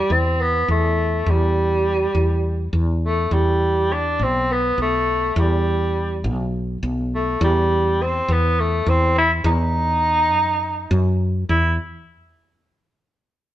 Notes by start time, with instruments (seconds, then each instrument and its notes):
Already playing: tenor saxophone G3
0.10 fretless electric bass E2, tenor saxophone C4
0.41 tenor saxophone B3
0.68 fretless electric bass E2, tenor saxophone A3
1.26 fretless electric bass E2, tenor saxophone G3
2.15 fretless electric bass E2
2.73 fretless electric bass E2
3.04 tenor saxophone A3
3.31 fretless electric bass E2, tenor saxophone G3
3.93 tenor saxophone D4
4.19 fretless electric bass B1, tenor saxophone C4
4.52 tenor saxophone B3
4.78 fretless electric bass B1
4.82 tenor saxophone A3
5.36 fretless electric bass E2, tenor saxophone G3
6.24 fretless electric bass B1
6.83 fretless electric bass B1
7.15 tenor saxophone A3
7.41 fretless electric bass E2, tenor saxophone G3
8.02 tenor saxophone C4
8.28 fretless electric bass E2, tenor saxophone B3
8.60 tenor saxophone A3
8.86 fretless electric bass E2, tenor saxophone C4
9.18 tenor saxophone E4
9.44 fretless electric bass E2, tenor saxophone D#4
10.32 fretless electric bass F#2
10.91 fretless electric bass F#2
11.49 fretless electric bass E2, tenor saxophone E4